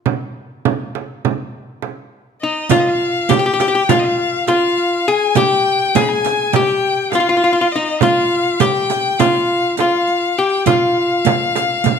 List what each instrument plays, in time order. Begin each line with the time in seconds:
Already playing: hollow-body jazz guitar F4
0.06 frame drum
0.65 frame drum
0.95 frame drum
1.25 frame drum
1.82 frame drum
2.42 hollow-body jazz guitar D#4, violin D#5
2.69 hollow-body jazz guitar F4, violin F5, riq, frame drum
2.80 violin D#5
2.88 violin F5
3.29 hollow-body jazz guitar G4, violin G5, riq, frame drum
3.39 hollow-body jazz guitar G4
3.46 hollow-body jazz guitar G4
3.54 hollow-body jazz guitar G4
3.60 hollow-body jazz guitar G4, riq, frame drum
3.68 hollow-body jazz guitar G4
3.75 hollow-body jazz guitar G4
3.89 hollow-body jazz guitar F4, violin F5, riq, frame drum
3.99 violin D#5
4.04 violin F5
4.47 hollow-body jazz guitar F4, violin F5, riq, frame drum
4.77 riq
5.08 hollow-body jazz guitar G#4, violin G#5
5.35 hollow-body jazz guitar G4, violin G5, riq, frame drum
5.95 hollow-body jazz guitar G#4, violin G#5, riq, frame drum
6.01 violin B5
6.09 violin G#5
6.25 riq, frame drum
6.52 hollow-body jazz guitar G4, violin G5, riq, frame drum
7.12 hollow-body jazz guitar F4, violin F5, riq, frame drum
7.20 hollow-body jazz guitar F4
7.29 hollow-body jazz guitar F4
7.37 hollow-body jazz guitar F4
7.44 hollow-body jazz guitar F4
7.53 hollow-body jazz guitar F4
7.61 hollow-body jazz guitar F4
7.72 hollow-body jazz guitar D#4, violin D#5
8.01 hollow-body jazz guitar F4, violin F5, riq, frame drum
8.60 hollow-body jazz guitar G4, violin G5, riq, frame drum
8.90 riq, frame drum
9.19 hollow-body jazz guitar F4, violin F5, riq, frame drum
9.77 hollow-body jazz guitar F4, violin F5, riq, frame drum
10.07 riq
10.38 hollow-body jazz guitar G4, violin G5
10.66 hollow-body jazz guitar F4, violin F5, riq, frame drum
11.25 riq, frame drum
11.56 riq, frame drum
11.84 riq, frame drum